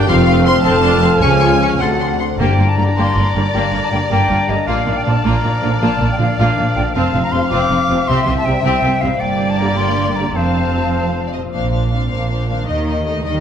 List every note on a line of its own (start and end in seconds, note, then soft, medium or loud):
0.00 0.10 G2 medium
0.00 0.10 D3 medium
0.00 0.11 D4 medium
0.00 0.10 G4 medium
0.00 0.10 A#4 medium
0.08 0.58 F1 medium
0.08 0.58 F2 medium
0.08 1.24 F2 medium
0.08 1.77 F3 medium
0.08 0.64 A3 medium
0.08 1.22 C4 medium
0.08 1.21 C4 medium
0.08 0.45 F4 loud
0.08 0.47 F5 medium
0.08 0.46 F5 medium
0.08 1.83 F5 medium
0.08 0.17 C6 medium
0.27 1.24 C3 medium
0.27 0.34 C6 medium
0.46 0.82 F4 medium
0.46 0.66 C5 loud
0.46 0.63 C6 medium
0.46 0.64 C6 medium
0.46 0.54 C6 medium
0.62 1.15 F1 medium
0.62 1.15 F2 medium
0.62 0.83 C4 medium
0.62 1.02 C5 medium
0.62 1.19 A5 medium
0.62 1.24 A5 medium
0.62 0.72 C6 medium
0.67 1.22 A4 loud
0.83 1.02 D4 medium
0.83 1.60 F4 medium
0.83 0.91 C6 medium
1.02 1.10 C4 medium
1.02 1.24 C5 medium
1.02 1.10 C6 medium
1.19 1.73 C#2 medium
1.19 1.74 C#2 medium
1.19 1.82 C#3 medium
1.19 1.78 C#4 medium
1.19 1.81 C#4 medium
1.19 1.41 C#4 medium
1.19 1.80 G#4 loud
1.19 1.78 G#5 medium
1.19 1.82 G#5 medium
1.19 1.29 C#6 medium
1.40 1.82 F3 soft
1.40 1.60 F4 medium
1.40 1.48 C#6 medium
1.60 1.80 C#4 medium
1.60 1.82 F4 soft
1.60 1.82 C#5 soft
1.60 1.70 C#6 soft
1.79 2.32 D2 medium
1.79 2.33 D2 medium
1.79 2.41 D3 soft
1.79 2.20 D3 medium
1.79 2.09 A3 soft
1.79 2.19 C4 medium
1.79 2.20 C4 medium
1.79 2.38 F#4 medium
1.79 2.39 F#5 medium
1.79 2.18 F#5 medium
1.79 2.20 A5 medium
1.79 1.89 C6 soft
2.00 2.19 D4 soft
2.00 2.08 C6 soft
2.19 2.59 D4 soft
2.19 2.41 C5 soft
2.19 2.25 F#5 medium
2.19 2.28 C6 soft
2.39 2.47 G1 medium
2.39 2.93 G2 medium
2.39 2.47 G2 medium
2.39 3.54 G2 medium
2.39 2.57 A#3 medium
2.39 3.51 D4 medium
2.39 2.57 G4 medium
2.39 4.64 D5 medium
2.39 2.70 G5 medium
2.39 3.50 A#5 medium
2.58 2.66 G1 medium
2.58 2.66 G2 medium
2.58 2.66 A#3 soft
2.58 2.98 D4 soft
2.58 2.67 F4 soft
2.69 2.77 A5 medium
2.78 2.86 G1 soft
2.78 2.85 G2 soft
2.78 2.84 D3 medium
2.78 2.85 G3 medium
2.78 2.86 A#3 soft
2.78 2.85 A#3 medium
2.78 2.85 D4 medium
2.78 2.86 G4 soft
2.78 3.34 A#4 soft
2.78 2.84 A#5 medium
2.96 3.04 G1 medium
2.96 3.05 G2 medium
2.96 3.15 A#3 medium
2.96 3.73 D4 soft
2.96 3.14 G4 medium
2.96 3.29 C6 medium
3.16 3.24 G1 soft
3.16 3.24 G2 soft
3.16 4.30 G3 soft
3.16 3.25 A#3 soft
3.16 3.23 F4 soft
3.35 3.43 G1 soft
3.35 3.43 G2 soft
3.35 3.41 D3 medium
3.35 3.42 G3 medium
3.35 3.42 A#3 medium
3.35 3.44 A#3 medium
3.35 3.43 D4 medium
3.35 3.42 G4 medium
3.35 3.91 A#4 soft
3.53 3.62 G1 medium
3.53 3.61 G2 medium
3.53 4.70 G2 medium
3.53 3.72 A#3 medium
3.53 4.10 D4 medium
3.53 3.71 G4 medium
3.53 4.09 A#5 medium
3.53 3.86 A#5 medium
3.71 3.81 G1 soft
3.71 3.81 G2 soft
3.71 3.81 A#3 soft
3.71 4.10 D4 soft
3.71 3.79 F4 soft
3.85 3.91 A5 medium
3.91 4.00 G1 soft
3.91 4.00 G2 soft
3.91 3.98 D3 medium
3.91 3.98 G3 medium
3.91 3.99 A#3 soft
3.91 3.99 A#3 medium
3.91 3.99 D4 medium
3.91 3.99 G4 soft
3.91 4.48 A#4 soft
3.91 3.98 G5 medium
4.10 4.19 G1 medium
4.10 4.18 G2 medium
4.10 4.28 A#3 medium
4.10 4.87 D4 soft
4.10 4.67 D4 medium
4.10 4.28 G4 medium
4.10 4.51 G5 medium
4.10 4.68 A#5 medium
4.29 4.37 G1 soft
4.29 4.37 G2 soft
4.29 4.70 G3 soft
4.29 4.38 A#3 medium
4.29 4.38 F4 soft
4.47 4.57 G1 soft
4.47 4.57 G2 soft
4.47 4.54 D3 medium
4.47 4.54 G3 medium
4.47 4.56 A#3 soft
4.47 4.56 A#3 medium
4.47 4.56 D4 medium
4.47 4.57 G4 medium
4.47 5.05 A#4 soft
4.47 4.69 D#5 medium
4.67 4.75 A#1 medium
4.67 4.76 A#2 medium
4.67 5.81 A#2 soft
4.67 4.85 A#3 medium
4.67 5.24 D4 medium
4.67 4.85 F4 medium
4.67 6.90 D5 medium
4.67 5.23 F5 medium
4.67 4.99 F5 medium
4.87 4.95 A#1 soft
4.87 4.95 A#2 soft
4.87 4.95 A#3 soft
4.87 5.25 D4 soft
4.87 4.95 D#4 soft
4.97 5.06 G5 medium
5.05 5.14 A#1 soft
5.05 5.14 A#2 soft
5.05 5.14 D3 medium
5.05 5.13 F3 medium
5.05 5.13 A#3 soft
5.05 5.13 A#3 medium
5.05 5.13 F4 medium
5.05 5.14 F4 soft
5.05 5.62 A#4 soft
5.05 5.27 A5 medium
5.24 5.33 A#1 medium
5.24 5.33 A#2 medium
5.24 5.41 A#3 medium
5.24 6.36 D4 medium
5.24 6.00 D4 soft
5.24 5.43 F4 medium
5.24 6.35 F5 medium
5.24 5.81 A#5 medium
5.42 5.52 A#1 soft
5.42 5.52 A#2 soft
5.42 6.56 F3 soft
5.42 5.50 A#3 soft
5.42 5.51 D#4 soft
5.62 5.71 A#1 soft
5.62 5.70 A#2 soft
5.62 5.69 D3 medium
5.62 5.70 F3 medium
5.62 5.69 A#3 medium
5.62 5.69 F4 medium
5.62 5.71 F4 medium
5.62 6.18 A#4 soft
5.81 5.89 A#1 medium
5.81 5.89 A#2 medium
5.81 6.96 A#2 medium
5.81 5.99 A#3 medium
5.81 5.99 F4 medium
5.81 6.09 A5 medium
6.00 6.08 A#1 medium
6.00 6.07 A#2 soft
6.00 6.08 A#3 soft
6.00 6.38 D4 soft
6.00 6.08 D#4 soft
6.12 6.19 G5 medium
6.18 6.27 A#1 soft
6.18 6.27 A#2 soft
6.18 6.25 D3 medium
6.18 6.25 F3 medium
6.18 6.26 A#3 medium
6.18 6.28 A#3 soft
6.18 6.26 F4 soft
6.18 6.26 F4 medium
6.18 6.76 A#4 soft
6.18 6.38 F5 medium
6.38 6.45 A#1 medium
6.38 6.46 A#2 medium
6.38 6.57 A#3 medium
6.38 6.96 D4 soft
6.38 6.96 D4 medium
6.38 6.56 F4 medium
6.38 6.94 F5 medium
6.38 6.76 F5 medium
6.57 6.64 A#1 soft
6.57 6.65 A#2 soft
6.57 7.69 F3 soft
6.57 6.65 A#3 soft
6.57 6.64 D#4 soft
6.76 6.83 A#1 soft
6.76 6.84 A#2 soft
6.76 6.83 D3 medium
6.76 6.82 F3 medium
6.76 6.82 A#3 medium
6.76 6.85 A#3 soft
6.76 6.83 F4 medium
6.76 6.96 A#4 soft
6.76 6.82 G5 medium
6.95 7.02 F1 medium
6.95 7.02 F2 medium
6.95 8.10 F2 medium
6.95 8.08 C4 medium
6.95 7.12 C4 medium
6.95 7.12 F4 medium
6.95 8.10 F5 medium
6.95 8.06 F5 medium
6.95 7.22 A5 medium
7.14 7.21 F1 soft
7.14 7.22 F2 soft
7.14 7.21 C4 soft
7.14 7.21 D#4 soft
7.14 7.51 F4 soft
7.23 7.33 A#5 medium
7.32 7.41 F1 soft
7.32 7.40 F2 medium
7.32 7.40 C3 medium
7.32 7.40 F3 medium
7.32 7.39 C4 medium
7.32 7.41 C4 soft
7.32 7.39 F4 medium
7.32 7.88 C5 soft
7.32 7.49 C6 medium
7.49 7.59 F1 medium
7.49 7.59 F2 medium
7.49 7.69 C4 medium
7.49 7.69 F4 medium
7.49 8.10 F4 soft
7.49 8.09 D6 medium
7.70 7.78 F1 soft
7.70 7.78 F2 soft
7.70 8.10 F3 medium
7.70 7.79 C4 medium
7.70 7.78 D#4 soft
7.89 7.97 F1 soft
7.89 7.97 F2 soft
7.89 7.96 C3 medium
7.89 7.97 F3 medium
7.89 7.96 C4 medium
7.89 7.98 C4 medium
7.89 7.97 F4 soft
7.89 7.96 F4 medium
7.89 8.44 C5 soft
8.07 8.16 C2 medium
8.07 8.15 C3 medium
8.07 9.22 C3 medium
8.07 8.64 C4 medium
8.07 8.26 C4 medium
8.07 8.25 G4 medium
8.07 9.20 E5 medium
8.07 8.64 E5 medium
8.07 8.36 C6 medium
8.27 8.35 C2 medium
8.27 8.34 C3 medium
8.27 8.35 C4 soft
8.27 8.62 E4 soft
8.27 8.35 F4 soft
8.38 8.47 A5 medium
8.45 8.54 C2 soft
8.45 8.52 C3 medium
8.45 8.54 C3 medium
8.45 8.54 G3 medium
8.45 8.52 C4 medium
8.45 8.54 C4 soft
8.45 8.52 E4 medium
8.45 8.52 G4 medium
8.45 9.00 C5 soft
8.45 8.63 G5 medium
8.63 8.73 C2 medium
8.63 8.71 C3 medium
8.63 8.81 C4 medium
8.63 9.00 C4 medium
8.63 9.22 E4 medium
8.63 8.82 G4 medium
8.63 9.01 E5 medium
8.63 9.03 G5 medium
8.82 8.91 C2 soft
8.82 8.90 C3 soft
8.82 9.96 G3 medium
8.82 8.91 C4 soft
8.82 8.91 F4 medium
9.01 9.10 C2 soft
9.01 9.09 C3 soft
9.01 9.09 C3 medium
9.01 9.09 G3 medium
9.01 9.08 C4 medium
9.01 9.10 C4 soft
9.01 9.08 E4 medium
9.01 9.09 G4 medium
9.01 9.22 C5 soft
9.01 9.22 F5 medium
9.19 10.33 G1 medium
9.19 10.38 G2 medium
9.19 10.33 G2 medium
9.19 10.39 A#3 medium
9.19 10.33 A#3 medium
9.19 10.32 G4 medium
9.19 10.38 D5 medium
9.19 10.33 D5 medium
9.19 9.52 G5 medium
9.40 9.77 D4 soft
9.50 9.60 A5 medium
9.58 9.67 D3 medium
9.58 9.67 G3 medium
9.58 9.68 A#3 medium
9.58 9.67 D4 medium
9.58 10.15 A#4 soft
9.58 9.78 A#5 medium
9.77 10.38 D4 soft
9.77 10.18 C6 medium
9.97 10.38 G3 soft
10.16 10.25 D3 soft
10.16 10.25 G3 soft
10.16 10.26 A#3 soft
10.16 10.25 D4 soft
10.16 10.38 A#4 soft
10.16 10.37 A#5 medium
10.35 11.35 F1 soft
10.35 11.35 F2 soft
10.35 11.56 F2 soft
10.35 11.35 C4 soft
10.35 11.34 C5 soft
10.35 10.92 C5 soft
10.35 11.35 F5 soft
10.35 11.34 A5 medium
10.75 10.83 C3 soft
10.75 10.82 F3 soft
10.75 10.84 C4 soft
10.75 10.84 F4 soft
10.75 11.33 C5 soft
10.94 11.44 F4 soft
10.94 11.22 C5 soft
11.15 11.39 C4 soft
11.27 11.31 D5 soft
11.33 12.61 A#2 soft
11.33 11.41 C3 soft
11.33 11.41 F3 soft
11.33 11.43 C4 soft
11.33 11.42 F4 soft
11.33 12.70 C5 soft
11.33 11.41 D#5 soft
11.41 12.63 C4 soft
11.45 12.65 F4 soft
11.49 12.04 A#2 soft
11.49 12.67 D5 soft
11.54 12.05 A#1 soft
11.54 11.90 F3 medium
11.54 11.72 D4 soft
11.54 11.72 C5 soft
11.54 11.71 F5 soft
11.72 11.91 D4 soft
11.72 11.91 C5 soft
11.72 11.90 F5 soft
11.91 12.12 C4 medium
11.91 12.10 D4 soft
11.91 12.08 C5 soft
11.91 12.09 F5 soft
12.10 12.61 A#1 soft
12.10 12.62 A#2 soft
12.10 12.68 A#3 medium
12.10 12.29 D4 soft
12.10 12.29 C5 soft
12.10 12.29 F5 soft
12.30 12.49 D4 soft
12.30 12.49 C5 soft
12.30 12.48 F5 soft
12.49 13.40 D#3 soft
12.49 12.68 D4 soft
12.49 12.68 C5 soft
12.49 12.68 F5 soft
12.55 13.40 A#3 soft
12.59 13.40 D#4 soft
12.63 13.17 D#3 medium
12.63 13.40 D#5 soft
12.68 13.18 D#2 medium
12.68 13.05 A#3 medium
12.68 12.85 D#4 soft
12.68 12.86 A#4 soft
12.68 12.87 D#5 soft
12.86 13.04 D#4 soft
12.86 13.05 A#4 soft
12.86 13.05 D#5 soft
13.05 13.24 A3 medium
13.05 13.23 D#4 soft
13.05 13.24 A#4 soft
13.05 13.24 D#5 soft
13.24 13.40 D#2 medium
13.24 13.40 D#3 medium
13.24 13.40 G3 medium
13.24 13.40 D#4 soft
13.24 13.40 A#4 medium
13.24 13.40 D#5 soft